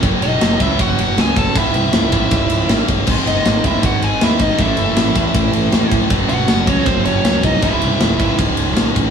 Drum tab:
CC |--------|--------|x-------|--------|
RD |xxxxxxxx|xxxxxxxx|-xxxxxxx|xxxxxxxx|
SD |--o---o-|--o---o-|--o---o-|--o---o-|
BD |o--oo--o|o--oo--o|o--oo--o|o--oo--o|

CC |--------|--------|
RD |xxxxxxxx|xxxxxxxx|
SD |--o---o-|--o---o-|
BD |o--oo--o|o--oo--o|